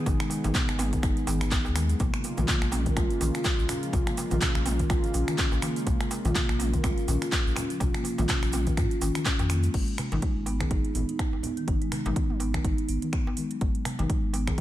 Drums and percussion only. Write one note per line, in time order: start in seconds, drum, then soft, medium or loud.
0.06 kick loud
0.06 closed hi-hat medium
0.06 darbuka tek loud
0.06 darbuka dum medium
0.06 shaker medium
0.20 finger snap loud
0.20 closed hi-hat soft
0.20 shaker soft
0.30 open hi-hat medium
0.30 darbuka tek medium
0.30 shaker medium
0.44 closed hi-hat soft
0.44 mid tom medium
0.44 darbuka ka loud
0.44 high conga loud
0.44 low conga loud
0.44 shaker soft
0.54 kick loud
0.54 clap loud
0.54 closed hi-hat medium
0.54 darbuka tek medium
0.54 darbuka dum medium
0.54 shaker soft
0.68 finger snap medium
0.68 shaker soft
0.79 mid tom medium
0.79 open hi-hat medium
0.79 darbuka ka loud
0.79 darbuka tek loud
0.79 shaker medium
0.93 kick medium
0.93 closed hi-hat soft
0.93 high conga loud
0.93 shaker soft
1.03 finger snap loud
1.03 kick loud
1.03 closed hi-hat medium
1.03 darbuka tek medium
1.03 shaker soft
1.17 closed hi-hat soft
1.17 shaker soft
1.27 open hi-hat medium
1.27 high conga medium
1.27 darbuka tek loud
1.27 shaker loud
1.41 finger snap medium
1.41 closed hi-hat soft
1.41 high conga medium
1.41 shaker soft
1.51 kick loud
1.51 clap loud
1.51 closed hi-hat medium
1.51 darbuka tek loud
1.51 shaker medium
1.65 darbuka ka loud
1.65 shaker soft
1.76 finger snap medium
1.76 open hi-hat medium
1.76 darbuka tek medium
1.76 high conga medium
1.76 shaker medium
1.89 closed hi-hat soft
1.89 shaker soft
2.00 kick loud
2.00 closed hi-hat medium
2.00 darbuka tek medium
2.00 darbuka dum loud
2.00 shaker medium
2.14 finger snap medium
2.14 closed hi-hat soft
2.14 shaker soft
2.24 open hi-hat medium
2.24 darbuka tek medium
2.24 shaker medium
2.37 closed hi-hat soft
2.37 mid tom medium
2.37 darbuka ka loud
2.37 high conga loud
2.37 low conga medium
2.37 shaker soft
2.48 kick loud
2.48 clap loud
2.48 closed hi-hat medium
2.48 darbuka tek loud
2.48 darbuka dum medium
2.48 shaker soft
2.62 finger snap medium
2.62 shaker soft
2.72 mid tom medium
2.72 open hi-hat medium
2.72 darbuka ka loud
2.72 darbuka tek loud
2.72 shaker loud
2.86 kick medium
2.86 closed hi-hat soft
2.86 high conga loud
2.86 shaker soft
2.97 finger snap loud
2.97 kick loud
2.97 closed hi-hat medium
2.97 mid tom loud
2.97 darbuka tek medium
2.97 shaker medium
3.10 closed hi-hat soft
3.10 shaker soft
3.21 open hi-hat medium
3.21 high conga medium
3.21 darbuka tek medium
3.21 low conga medium
3.21 shaker loud
3.35 finger snap medium
3.35 closed hi-hat soft
3.35 shaker soft
3.44 kick loud
3.44 clap loud
3.44 closed hi-hat medium
3.44 darbuka tek loud
3.44 shaker medium
3.59 shaker soft
3.69 finger snap medium
3.69 open hi-hat medium
3.69 darbuka tek medium
3.69 low conga medium
3.69 shaker medium
3.83 closed hi-hat soft
3.83 shaker soft
3.93 kick loud
3.93 closed hi-hat medium
3.93 darbuka tek medium
3.93 darbuka dum loud
3.93 shaker medium
4.07 finger snap medium
4.07 closed hi-hat soft
4.07 shaker soft
4.17 open hi-hat medium
4.17 darbuka tek loud
4.17 shaker loud
4.31 closed hi-hat soft
4.31 mid tom medium
4.31 darbuka ka medium
4.31 high conga loud
4.31 low conga loud
4.31 shaker soft
4.41 kick loud
4.41 clap loud
4.41 closed hi-hat medium
4.41 darbuka tek medium
4.41 darbuka dum loud
4.41 shaker soft
4.55 finger snap medium
4.55 shaker soft
4.66 mid tom medium
4.66 open hi-hat medium
4.66 darbuka ka loud
4.66 darbuka tek medium
4.66 shaker medium
4.79 kick medium
4.79 closed hi-hat soft
4.79 high conga loud
4.79 shaker soft
4.90 finger snap medium
4.90 kick loud
4.90 closed hi-hat medium
4.90 darbuka tek loud
4.90 shaker soft
5.04 closed hi-hat soft
5.04 shaker soft
5.14 open hi-hat medium
5.14 darbuka tek medium
5.14 shaker medium
5.28 finger snap medium
5.28 closed hi-hat soft
5.28 high conga medium
5.28 shaker soft
5.38 kick loud
5.38 clap loud
5.38 closed hi-hat medium
5.38 darbuka tek medium
5.38 shaker medium
5.52 darbuka ka loud
5.52 shaker soft
5.62 finger snap medium
5.62 open hi-hat medium
5.62 high conga medium
5.62 darbuka tek medium
5.62 shaker medium
5.76 closed hi-hat soft
5.76 shaker soft
5.86 kick loud
5.86 closed hi-hat medium
5.86 darbuka tek medium
5.86 darbuka dum loud
5.86 shaker medium
6.01 finger snap medium
6.01 closed hi-hat soft
6.01 shaker soft
6.11 open hi-hat medium
6.11 darbuka tek medium
6.11 shaker medium
6.25 closed hi-hat soft
6.25 mid tom medium
6.25 darbuka ka loud
6.25 high conga medium
6.25 low conga loud
6.25 shaker soft
6.35 kick loud
6.35 clap loud
6.35 closed hi-hat medium
6.35 darbuka tek medium
6.35 darbuka dum loud
6.35 shaker soft
6.49 finger snap medium
6.49 shaker soft
6.59 mid tom medium
6.59 open hi-hat medium
6.59 darbuka ka loud
6.59 darbuka tek medium
6.59 shaker medium
6.73 kick medium
6.73 closed hi-hat soft
6.73 high conga loud
6.73 shaker soft
6.84 finger snap medium
6.84 kick loud
6.84 closed hi-hat medium
6.84 mid tom medium
6.84 darbuka tek medium
6.84 shaker medium
6.98 closed hi-hat soft
6.98 shaker soft
7.08 open hi-hat medium
7.08 high conga medium
7.08 darbuka tek medium
7.08 low conga loud
7.08 shaker medium
7.22 finger snap medium
7.22 closed hi-hat soft
7.22 shaker soft
7.32 kick loud
7.32 clap loud
7.32 closed hi-hat medium
7.32 darbuka tek medium
7.32 shaker soft
7.47 shaker soft
7.56 finger snap medium
7.56 open hi-hat medium
7.56 darbuka tek medium
7.56 low conga loud
7.56 shaker medium
7.70 closed hi-hat soft
7.70 shaker soft
7.80 kick loud
7.80 closed hi-hat medium
7.80 darbuka tek medium
7.80 darbuka dum loud
7.80 shaker medium
7.94 finger snap medium
7.94 closed hi-hat soft
7.94 shaker soft
8.04 open hi-hat medium
8.04 darbuka tek medium
8.04 shaker medium
8.18 closed hi-hat soft
8.18 mid tom medium
8.18 darbuka ka loud
8.18 high conga loud
8.18 low conga loud
8.18 shaker soft
8.29 kick loud
8.29 clap loud
8.29 closed hi-hat medium
8.29 darbuka tek loud
8.29 darbuka dum loud
8.29 shaker soft
8.43 finger snap medium
8.43 closed hi-hat soft
8.43 shaker soft
8.53 mid tom medium
8.53 open hi-hat medium
8.53 darbuka ka loud
8.53 darbuka tek medium
8.53 shaker medium
8.67 kick medium
8.67 closed hi-hat soft
8.67 high conga loud
8.67 shaker soft
8.77 finger snap medium
8.77 kick loud
8.77 closed hi-hat medium
8.77 darbuka tek medium
8.77 shaker medium
8.91 closed hi-hat soft
8.91 shaker soft
9.01 open hi-hat medium
9.01 darbuka tek medium
9.01 high conga medium
9.01 shaker loud
9.15 finger snap medium
9.15 closed hi-hat soft
9.15 high conga medium
9.15 shaker soft
9.25 kick loud
9.25 clap loud
9.25 closed hi-hat medium
9.25 darbuka tek loud
9.25 low conga medium
9.25 shaker medium
9.39 closed hi-hat soft
9.39 darbuka ka loud
9.39 high conga medium
9.39 shaker soft
9.50 finger snap medium
9.50 open hi-hat medium
9.50 darbuka tek medium
9.50 high conga medium
9.50 shaker medium
9.63 closed hi-hat soft
9.63 shaker soft
9.74 kick loud
9.74 closed hi-hat medium
9.74 crash medium
9.88 closed hi-hat soft
9.98 finger snap medium
9.98 open hi-hat medium
9.98 darbuka dum loud
10.12 closed hi-hat soft
10.12 darbuka ka loud
10.12 high conga medium
10.12 darbuka tek medium
10.12 low conga medium
10.22 kick loud
10.22 closed hi-hat medium
10.46 open hi-hat medium
10.46 darbuka ka loud
10.60 finger snap medium
10.60 kick medium
10.60 closed hi-hat soft
10.60 high conga loud
10.60 darbuka tek medium
10.71 kick loud
10.71 closed hi-hat medium
10.85 closed hi-hat soft
10.94 open hi-hat medium
10.94 high conga medium
10.94 low conga loud
11.09 closed hi-hat soft
11.19 finger snap medium
11.19 kick loud
11.19 closed hi-hat medium
11.33 darbuka tek medium
11.43 open hi-hat medium
11.43 low conga loud
11.57 closed hi-hat soft
11.68 kick loud
11.68 closed hi-hat medium
11.82 closed hi-hat soft
11.92 finger snap medium
11.92 open hi-hat medium
11.92 darbuka dum medium
12.05 closed hi-hat soft
12.05 mid tom medium
12.05 darbuka ka loud
12.05 high conga medium
12.05 darbuka tek medium
12.05 low conga loud
12.16 kick loud
12.16 closed hi-hat medium
12.30 mid tom medium
12.40 open hi-hat medium
12.40 darbuka ka loud
12.54 finger snap medium
12.54 kick medium
12.54 closed hi-hat soft
12.54 high conga loud
12.64 kick loud
12.64 closed hi-hat medium
12.78 closed hi-hat soft
12.89 open hi-hat medium
13.02 closed hi-hat soft
13.02 high conga medium
13.13 finger snap medium
13.13 kick loud
13.13 closed hi-hat medium
13.27 darbuka ka loud
13.37 open hi-hat medium
13.37 high conga medium
13.51 closed hi-hat soft
13.61 kick loud
13.61 closed hi-hat soft
13.75 closed hi-hat soft
13.85 finger snap medium
13.85 open hi-hat medium
13.85 darbuka dum medium
13.99 closed hi-hat soft
13.99 darbuka ka loud
13.99 darbuka tek medium
13.99 high conga medium
13.99 low conga medium
14.10 kick loud
14.10 closed hi-hat medium
14.34 open hi-hat medium
14.34 darbuka ka loud
14.47 finger snap medium
14.47 kick medium
14.47 closed hi-hat soft
14.47 high conga loud
14.47 darbuka tek medium